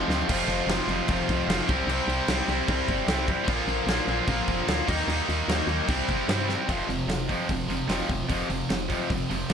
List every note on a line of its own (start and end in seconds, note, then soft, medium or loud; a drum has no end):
0.00 0.27 F2 medium
0.00 0.28 C3 medium
0.00 0.29 F3 medium
0.00 0.20 C4 medium
0.08 0.24 D2 loud
0.08 0.28 F3 medium
0.08 0.28 A3 medium
0.08 0.27 C4 medium
0.08 0.26 F4 medium
0.08 snare loud
0.28 0.42 F1 loud
0.28 0.67 F2 loud
0.28 0.67 C3 loud
0.28 0.68 F3 loud
0.28 0.68 A3 loud
0.28 0.70 C4 loud
0.28 0.70 F4 loud
0.28 kick loud
0.28 crash loud
0.28 crash medium
0.48 0.62 F1 loud
0.48 crash medium
0.67 0.81 F1 medium
0.67 0.88 F2 medium
0.67 0.87 C3 medium
0.67 0.88 F3 medium
0.67 0.89 A3 medium
0.67 0.90 C4 medium
0.67 snare loud
0.67 crash medium
0.71 0.89 F4 medium
0.87 1.02 F1 medium
0.87 1.08 F2 medium
0.87 1.08 C3 medium
0.87 1.09 F3 loud
0.87 1.09 A3 medium
0.87 1.10 C4 medium
0.87 1.10 F4 loud
0.87 crash medium
1.08 1.22 F1 loud
1.08 1.47 F2 loud
1.08 1.48 C3 loud
1.08 1.47 F3 medium
1.08 1.49 A3 loud
1.08 1.49 C4 loud
1.08 1.49 F4 loud
1.08 kick loud
1.08 crash medium
1.29 1.43 C2 medium
1.29 kick medium
1.29 crash medium
1.48 1.62 F1 medium
1.48 1.67 F2 medium
1.48 1.67 C3 medium
1.48 1.67 F3 medium
1.48 1.68 A3 medium
1.48 1.68 C4 loud
1.48 1.68 F4 medium
1.48 snare loud
1.48 crash loud
1.68 1.83 C2 loud
1.68 1.87 C3 medium
1.68 1.88 G3 loud
1.68 1.89 C4 loud
1.68 1.89 E4 loud
1.68 kick loud
1.68 crash medium
1.87 2.01 C2 medium
1.87 2.27 C3 medium
1.87 2.29 G3 loud
1.87 2.29 C4 loud
1.87 2.29 E4 loud
1.87 crash medium
2.07 2.22 C2 loud
2.07 crash medium
2.28 2.42 C2 medium
2.28 2.47 C3 medium
2.28 2.48 G3 medium
2.28 2.49 C4 medium
2.28 2.49 E4 medium
2.28 snare loud
2.28 crash loud
2.48 2.62 C2 loud
2.48 2.66 C3 medium
2.48 2.66 G3 medium
2.48 2.66 C4 medium
2.48 2.68 E4 medium
2.48 crash medium
2.67 2.83 C2 loud
2.67 3.05 C3 medium
2.67 3.07 G3 loud
2.67 3.07 C4 loud
2.67 3.07 E4 loud
2.67 kick loud
2.67 crash medium
2.89 3.03 G1 medium
2.89 kick medium
2.89 crash medium
3.07 3.36 C2 medium
3.07 3.27 C3 medium
3.07 3.28 G3 medium
3.07 3.28 C4 medium
3.07 3.29 E4 medium
3.07 snare loud
3.07 crash medium
3.28 3.47 C3 medium
3.28 3.47 G3 medium
3.28 3.47 C4 medium
3.28 3.48 E4 medium
3.28 kick medium
3.28 crash medium
3.47 3.62 A#1 loud
3.47 3.86 A#2 loud
3.47 3.87 D3 loud
3.47 3.88 F3 medium
3.47 3.89 A#3 loud
3.47 3.88 F4 loud
3.47 kick loud
3.47 crash medium
3.67 3.82 A#1 loud
3.67 crash medium
3.86 4.01 A#1 medium
3.86 4.06 A#2 medium
3.86 4.07 D3 medium
3.86 4.07 F3 medium
3.86 4.08 A#3 medium
3.86 4.09 F4 medium
3.86 snare loud
3.86 crash medium
4.07 4.22 A#1 medium
4.07 4.26 A#2 medium
4.07 4.27 D3 medium
4.07 4.28 F3 medium
4.07 4.27 A#3 medium
4.07 4.28 F4 loud
4.07 crash medium
4.27 4.42 A#1 loud
4.27 4.65 A#2 loud
4.27 4.66 D3 loud
4.27 4.66 F3 loud
4.27 4.68 A#3 loud
4.27 4.68 F4 loud
4.27 kick loud
4.27 crash medium
4.47 4.62 F1 medium
4.47 kick medium
4.47 crash medium
4.67 4.82 D2 loud
4.67 4.86 A#2 medium
4.67 4.87 D3 medium
4.67 4.87 F3 medium
4.67 4.87 A#3 medium
4.67 4.87 F4 medium
4.67 snare loud
4.67 crash medium
4.88 5.02 D#2 loud
4.88 5.07 D#3 medium
4.88 5.07 G3 loud
4.88 5.08 A#3 loud
4.88 5.08 D#4 loud
4.88 kick loud
4.88 crash loud
5.08 5.22 D#2 loud
5.08 5.48 D#3 loud
5.08 5.49 G3 loud
5.08 5.50 A#3 loud
5.08 5.49 D#4 loud
5.08 crash medium
5.29 5.43 D#2 medium
5.29 crash medium
5.48 5.62 D#2 medium
5.48 5.67 D#3 medium
5.48 5.68 G3 medium
5.48 5.68 A#3 medium
5.48 5.69 D#4 medium
5.48 snare loud
5.48 crash medium
5.67 5.82 D#2 medium
5.67 5.87 D#3 medium
5.67 5.88 G3 loud
5.67 5.88 A#3 medium
5.67 5.88 D#4 loud
5.67 crash medium
5.88 6.02 C2 loud
5.88 6.28 C3 loud
5.88 6.28 G3 loud
5.88 6.29 C4 loud
5.88 6.29 E4 loud
5.88 kick loud
5.88 crash medium
6.09 6.23 G1 medium
6.09 kick medium
6.09 crash medium
6.28 6.56 G2 loud
6.28 6.48 C3 medium
6.28 6.49 G3 medium
6.28 6.49 C4 medium
6.28 6.50 E4 loud
6.28 snare loud
6.28 crash medium
6.49 6.68 C3 medium
6.49 6.68 G3 medium
6.49 6.68 C4 medium
6.49 6.69 E4 loud
6.49 snare medium
6.69 6.83 F1 medium
6.69 6.88 F2 medium
6.69 6.88 C3 medium
6.69 6.89 F3 medium
6.69 kick loud
6.69 crash medium
6.88 7.03 F1 medium
6.88 7.07 F2 medium
6.88 7.07 C3 medium
6.88 open hi-hat soft
7.07 7.36 F1 medium
7.07 7.27 F2 medium
7.07 7.27 C3 medium
7.07 snare loud
7.07 open hi-hat medium
7.29 7.48 F2 medium
7.29 7.48 C3 medium
7.29 7.48 F3 medium
7.29 kick medium
7.29 open hi-hat medium
7.49 7.64 F1 medium
7.49 7.67 F2 medium
7.49 7.67 C3 medium
7.49 kick loud
7.49 open hi-hat medium
7.67 7.83 F1 medium
7.67 7.86 F2 medium
7.67 7.87 C3 medium
7.67 7.87 F3 medium
7.67 open hi-hat soft
7.87 8.03 F1 medium
7.87 8.07 F2 medium
7.87 8.07 C3 medium
7.87 8.08 F3 medium
7.87 snare loud
7.87 open hi-hat medium
8.08 8.23 F1 medium
8.08 8.27 F2 medium
8.08 8.27 C3 medium
8.08 kick medium
8.08 open hi-hat medium
8.28 8.43 F1 medium
8.28 8.48 F2 medium
8.28 8.48 C3 medium
8.28 8.48 F3 loud
8.28 kick loud
8.28 open hi-hat medium
8.49 8.64 F1 medium
8.49 8.68 F2 medium
8.49 8.68 C3 medium
8.49 open hi-hat medium
8.69 8.98 F1 medium
8.69 8.87 F2 medium
8.69 8.88 C3 medium
8.69 snare loud
8.69 open hi-hat medium
8.88 9.08 F2 medium
8.88 9.08 C3 loud
8.88 9.08 F3 loud
8.88 kick medium
8.88 open hi-hat medium
9.09 9.24 F1 medium
9.09 9.28 F2 medium
9.09 9.27 C3 medium
9.09 kick loud
9.09 open hi-hat medium
9.28 9.45 F1 medium
9.28 9.48 F2 medium
9.28 9.48 C3 medium
9.28 9.48 F3 medium
9.28 open hi-hat medium
9.50 9.53 F1 medium
9.50 9.53 F2 medium
9.50 9.53 C3 medium
9.50 snare loud
9.50 open hi-hat medium